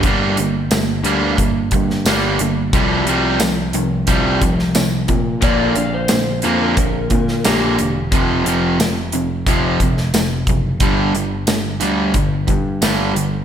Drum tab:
HH |x-x-x-x-x-x-x-x-|x-x-x-x-x-x-x-x-|x-x-x-x-x-x-x-x-|x-x-x-x-x-x-x-x-|
TB |----x-------x---|----x-------x---|----x-------x---|----x-------x---|
SD |----o------oo---|----o------oo---|----o------oo---|----o------oo---|
BD |o-------o-o-----|o-------o-o---o-|o-------o-o-----|o-------o-o---o-|

HH |x-x-x-x-x-x-x-x-|
TB |----x-------x---|
SD |----o-------o---|
BD |o-------o-o-----|